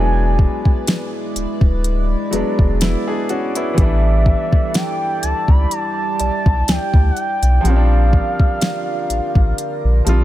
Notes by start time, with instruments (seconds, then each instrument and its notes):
Already playing: sub bass E1, grand piano F#3 G#3 B3 D4, analog synth pad G#3 E4 B4 D5, synth pluck E5, soft synth lead G#5
0.39 kick
0.65 kick
0.87 snare, closed hi-hat
1.36 sub bass D1, closed hi-hat
1.61 sub bass D1, kick
1.84 closed hi-hat
2.31 sub bass E1, grand piano F#3 G#3 B3, closed hi-hat
2.35 grand piano D4
2.59 sub bass E1, kick
2.81 grand piano B3 E4, snare, closed hi-hat
3.08 grand piano D4 G#4
3.29 grand piano C#4 F#4, closed hi-hat, open hi-hat
3.55 grand piano B3 E4, closed hi-hat
3.74 grand piano E3 G3, analog synth pad G3 E4 A4
3.78 sub bass A1, grand piano B3, soft synth lead E5, kick, closed hi-hat
3.82 grand piano D4
4.26 kick
4.53 kick
4.74 soft synth lead G5, snare, closed hi-hat
5.23 sub bass C#2, soft synth lead A5, closed hi-hat
5.48 sub bass C#2, soft synth lead B5, kick
5.71 analog synth pad G4, soft synth lead A5, closed hi-hat
6.20 sub bass B1, synth pluck D5, closed hi-hat
6.46 sub bass B1, kick
6.68 sub bass D2, soft synth lead G5, snare, closed hi-hat
6.94 sub bass D2, kick
7.11 soft synth lead F#5
7.17 soft synth lead G5, closed hi-hat
7.42 sub bass B1, closed hi-hat
7.61 sub bass A#1, analog synth pad D3 F4 A#4, grand piano F3 G3
7.65 grand piano C4, soft synth lead F5, closed hi-hat
7.70 grand piano C#4
7.76 grand piano D4
8.13 kick
8.40 kick
8.61 snare, closed hi-hat
9.10 sub bass A1, closed hi-hat
9.35 sub bass A1, kick
9.58 closed hi-hat
9.84 sub bass A#1
10.05 sub bass A#1, grand piano F3 G3 C4, closed hi-hat
10.09 grand piano F4